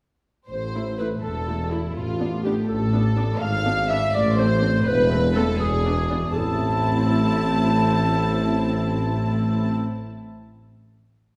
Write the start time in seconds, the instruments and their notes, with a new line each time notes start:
0.48 double bass section A1, tuba A1, cello section A2, violin section C5, clarinet C5
0.76 viola section A3 E4
0.98 viola section A3 E4, violin section B4, clarinet B4
1.21 double bass section E1, tuba E1, cello section E2, violin section A4, clarinet A4
1.48 viola section A3 E4
1.70 viola section A3 E4, violin section E4, clarinet E4
1.94 double bass section A1, tuba A1, cello section A2, violin section F4, clarinet F4
2.19 viola section B3 D4
2.43 viola section B3 D4, clarinet G4, violin section G4
2.68 double bass section A1, tuba A1, cello section A2, violin section A4, clarinet A4
2.94 viola section B3 D4
3.17 viola section B3 D4
3.40 double bass section G#1, tuba G#1, cello section G#2, violin section F5, clarinet F5
3.65 viola section B3 D4
3.88 viola section B3 D4, violin section E5, clarinet E5
4.13 double bass section A1, tuba A1, cello section A2, violin section D5, clarinet D5
4.36 viola section A3 C4, violin section C5, clarinet C5
4.62 viola section A3 C4
4.85 double bass section E1, tuba E1, cello section E2, violin section B4, clarinet B4
5.11 viola section A3 C4
5.34 viola section A3 C4, violin section A4, clarinet A4
5.59 double bass section E1, tuba E1, cello section E2, clarinet G#4, violin section G#4
5.84 viola section B3 D4
6.09 viola section B3 D4
6.34 double bass section A1, tuba A1, cello section A2, viola section C4 E4, clarinet A4, violin section A5